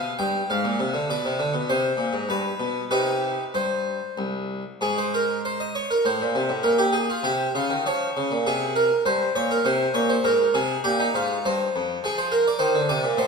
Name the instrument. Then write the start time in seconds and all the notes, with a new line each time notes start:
harpsichord
Already playing: B2 F5
0.19 G2 G5
0.50 G#2 F5
0.65 A#2
0.80 C3
0.94 D3
1.10 B2 D5
1.25 C3
1.39 D3
1.54 B2
1.69 C3 C5
1.97 A#2
2.13 G#2
2.29 G2 B4
2.60 B2
2.91 C3 D#4 G4 B4
3.54 G2 C5
4.18 C2
4.81 G#2 G#4
4.98 C5
5.14 A#4
5.45 C5
5.60 D#5
5.75 C#5
5.91 A#4
6.05 A2 C5
6.21 A#2
6.35 C3
6.49 A2
6.63 A#2 A#4
6.78 G4
6.92 G#4
7.10 F4
7.23 C3 G4
7.55 C#3 F4
7.70 D#3
7.86 F3 C#5
8.17 C#3
8.31 A#2
8.47 C3 G#4
8.76 A#4
9.06 G2 C5
9.35 A#2 C#5
9.51 A#4
9.65 C3 C5
9.94 A#2 C#5
10.10 C5
10.24 G#2 A#4
10.54 C3 G#4
10.84 A#2 G4
11.00 D#4
11.15 G#2 F4
11.46 G2 C5
11.76 F2
12.04 F3 G#4
12.18 C5
12.32 A#4
12.48 D5
12.59 D#3 C5
12.75 D3
12.89 C3 D5
13.04 A#2
13.17 A2 C5